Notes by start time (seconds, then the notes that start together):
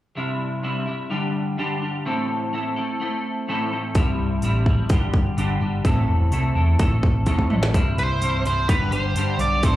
0.15 C2 G2 C3 G3 E4
0.63 G2 C3 G3 E4
0.86 C3 G3 E4
1.09 G2 D3 G3 D4 G4
1.58 G2 D3 G3 D4 G4
1.82 G3 D4 G4
2.05 A2 E3 A3 C4 E4 A4
2.53 A3 C4 E4 A4
2.76 A3 C4 E4 A4
3.00 A3 C4 E4 A4
3.48 A2 E3 A3 C4 E4 A4
3.72 A3 C4 E4 A4
3.95 C1 C2 G2 C3 G3 E4, kick, open hi-hat
4.19 C1
4.42 A1 G2 C3 G3 E4, open hi-hat
4.66 C3 G3 E4, kick
4.89 G1 G2 D3 G3 D4 G4, kick, open hi-hat
5.14 kick
5.37 G1 G2 D3 G3 D4 G4, open hi-hat
5.61 G1 G3 D4 G4
5.84 A1 A2 E3 A3 C4 E4 A4, kick, open hi-hat
6.09 E1
6.31 C2 A3 C4 E4 A4, open hi-hat
6.55 E2 A3 C4 E4 A4
6.79 A1 A3 C4 E4 A4, kick, open hi-hat
7.03 A1, kick
7.26 E1 A2 E3 A3 C4 E4 A4, kick, open hi-hat
7.39 kick
7.50 A1 A3 C4 E4 A4, mid tom
7.63 snare
7.73 C1 C2 G2 C3 G3 E4, kick, open hi-hat
7.98 C1 C5, open hi-hat
8.21 C1 G2 C3 G3 E4, open hi-hat
8.45 C1 C3 G3 E4 C5, open hi-hat
8.69 G1 G2 D3 G3 D4 G4 B4, kick, open hi-hat
8.91 G1 G3 D4 G4 C5, open hi-hat
9.15 G2 D3 G3 D4 G4, open hi-hat
9.38 B1 D5, open hi-hat
9.63 A1 A2 E3 A3 C4 E4 A4 C5, kick, open hi-hat